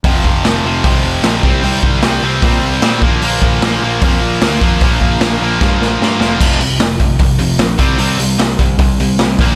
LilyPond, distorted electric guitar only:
\new Staff \with { instrumentName = "Distorted electric guitar" } { \clef bass \time 4/4 \key f \major \tempo 4 = 150 <f, c f>4 <f, c f>8 <f, c f>8 <f, c f>4 <f, c f>8 <c g c'>8 | <c g c'>4 <c g c'>8 <c g c'>8 <c g c'>4 <c g c'>8 <bes, f bes>8 | <bes, f bes>4 <bes, f bes>8 <bes, f bes>8 <bes, f bes>4 <bes, f bes>8 <bes, f bes>8 | <bes, f bes>4 <bes, f bes>8 <bes, f bes>8 <bes, f bes>4 <bes, f bes>8 <bes, f bes>8 |
<f, c f>8 <f, c>8 <f, c>8 <f, c>8 <f, c>8 <f, c>8 <f, c>8 <c g c'>8 | <c g c'>8 <c g>8 <c g>8 <c g>8 <c g>8 <c g>8 <c g>8 <bes, f bes>8 | }